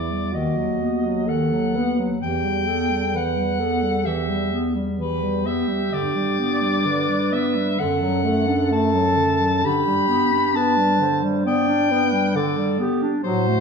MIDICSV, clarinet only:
0, 0, Header, 1, 2, 480
1, 0, Start_track
1, 0, Tempo, 952381
1, 653, Tempo, 927357
1, 1132, Time_signature, 4, 2, 24, 8
1, 4973, Tempo, 916031
1, 5933, Tempo, 890208
1, 7080, End_track
2, 0, Start_track
2, 0, Title_t, "Clarinet"
2, 0, Program_c, 0, 71
2, 0, Note_on_c, 0, 52, 35
2, 55, Note_on_c, 0, 55, 36
2, 63, Note_off_c, 0, 52, 0
2, 168, Note_off_c, 0, 55, 0
2, 171, Note_on_c, 0, 51, 42
2, 289, Note_on_c, 0, 54, 38
2, 297, Note_off_c, 0, 51, 0
2, 410, Note_on_c, 0, 59, 35
2, 418, Note_off_c, 0, 54, 0
2, 531, Note_on_c, 0, 54, 38
2, 539, Note_off_c, 0, 59, 0
2, 653, Note_on_c, 0, 51, 42
2, 661, Note_off_c, 0, 54, 0
2, 773, Note_on_c, 0, 54, 36
2, 781, Note_off_c, 0, 51, 0
2, 898, Note_on_c, 0, 59, 39
2, 905, Note_off_c, 0, 54, 0
2, 1011, Note_on_c, 0, 54, 34
2, 1018, Note_off_c, 0, 59, 0
2, 1125, Note_off_c, 0, 54, 0
2, 1128, Note_on_c, 0, 52, 41
2, 1248, Note_on_c, 0, 55, 35
2, 1256, Note_off_c, 0, 52, 0
2, 1364, Note_on_c, 0, 59, 34
2, 1372, Note_off_c, 0, 55, 0
2, 1487, Note_on_c, 0, 55, 38
2, 1495, Note_off_c, 0, 59, 0
2, 1610, Note_on_c, 0, 52, 39
2, 1618, Note_off_c, 0, 55, 0
2, 1725, Note_on_c, 0, 55, 36
2, 1733, Note_off_c, 0, 52, 0
2, 1846, Note_on_c, 0, 59, 39
2, 1854, Note_off_c, 0, 55, 0
2, 1964, Note_on_c, 0, 55, 37
2, 1972, Note_off_c, 0, 59, 0
2, 2078, Note_off_c, 0, 55, 0
2, 2082, Note_on_c, 0, 52, 43
2, 2205, Note_on_c, 0, 55, 39
2, 2213, Note_off_c, 0, 52, 0
2, 2326, Note_on_c, 0, 59, 40
2, 2334, Note_off_c, 0, 55, 0
2, 2441, Note_on_c, 0, 55, 41
2, 2449, Note_off_c, 0, 59, 0
2, 2564, Note_on_c, 0, 52, 41
2, 2572, Note_off_c, 0, 55, 0
2, 2687, Note_on_c, 0, 55, 40
2, 2695, Note_off_c, 0, 52, 0
2, 2806, Note_on_c, 0, 59, 47
2, 2813, Note_off_c, 0, 55, 0
2, 2923, Note_on_c, 0, 55, 40
2, 2931, Note_off_c, 0, 59, 0
2, 3043, Note_off_c, 0, 55, 0
2, 3046, Note_on_c, 0, 50, 51
2, 3169, Note_on_c, 0, 55, 43
2, 3177, Note_off_c, 0, 50, 0
2, 3292, Note_on_c, 0, 59, 41
2, 3300, Note_off_c, 0, 55, 0
2, 3408, Note_on_c, 0, 55, 43
2, 3416, Note_off_c, 0, 59, 0
2, 3528, Note_on_c, 0, 50, 45
2, 3536, Note_off_c, 0, 55, 0
2, 3651, Note_on_c, 0, 55, 41
2, 3659, Note_off_c, 0, 50, 0
2, 3775, Note_on_c, 0, 59, 45
2, 3783, Note_off_c, 0, 55, 0
2, 3895, Note_on_c, 0, 55, 42
2, 3903, Note_off_c, 0, 59, 0
2, 4012, Note_off_c, 0, 55, 0
2, 4015, Note_on_c, 0, 50, 50
2, 4134, Note_on_c, 0, 54, 45
2, 4142, Note_off_c, 0, 50, 0
2, 4250, Note_on_c, 0, 57, 46
2, 4258, Note_off_c, 0, 54, 0
2, 4371, Note_on_c, 0, 62, 48
2, 4379, Note_off_c, 0, 57, 0
2, 4489, Note_on_c, 0, 57, 54
2, 4497, Note_off_c, 0, 62, 0
2, 4608, Note_on_c, 0, 54, 50
2, 4616, Note_off_c, 0, 57, 0
2, 4726, Note_on_c, 0, 50, 53
2, 4734, Note_off_c, 0, 54, 0
2, 4851, Note_on_c, 0, 54, 45
2, 4858, Note_off_c, 0, 50, 0
2, 4967, Note_off_c, 0, 54, 0
2, 4970, Note_on_c, 0, 50, 57
2, 5092, Note_on_c, 0, 55, 48
2, 5100, Note_off_c, 0, 50, 0
2, 5207, Note_on_c, 0, 59, 46
2, 5215, Note_off_c, 0, 55, 0
2, 5332, Note_on_c, 0, 62, 43
2, 5340, Note_off_c, 0, 59, 0
2, 5446, Note_on_c, 0, 59, 48
2, 5454, Note_off_c, 0, 62, 0
2, 5567, Note_on_c, 0, 55, 52
2, 5574, Note_off_c, 0, 59, 0
2, 5684, Note_on_c, 0, 50, 50
2, 5692, Note_off_c, 0, 55, 0
2, 5808, Note_on_c, 0, 55, 54
2, 5816, Note_off_c, 0, 50, 0
2, 5921, Note_off_c, 0, 55, 0
2, 5924, Note_on_c, 0, 59, 62
2, 6047, Note_on_c, 0, 62, 53
2, 6055, Note_off_c, 0, 59, 0
2, 6172, Note_on_c, 0, 59, 51
2, 6180, Note_off_c, 0, 62, 0
2, 6286, Note_on_c, 0, 55, 57
2, 6294, Note_off_c, 0, 59, 0
2, 6405, Note_on_c, 0, 50, 60
2, 6413, Note_off_c, 0, 55, 0
2, 6528, Note_on_c, 0, 55, 53
2, 6536, Note_off_c, 0, 50, 0
2, 6643, Note_on_c, 0, 59, 56
2, 6651, Note_off_c, 0, 55, 0
2, 6768, Note_on_c, 0, 62, 49
2, 6776, Note_off_c, 0, 59, 0
2, 6883, Note_off_c, 0, 62, 0
2, 6886, Note_on_c, 0, 54, 60
2, 7013, Note_on_c, 0, 57, 50
2, 7021, Note_off_c, 0, 54, 0
2, 7080, Note_off_c, 0, 57, 0
2, 7080, End_track
0, 0, End_of_file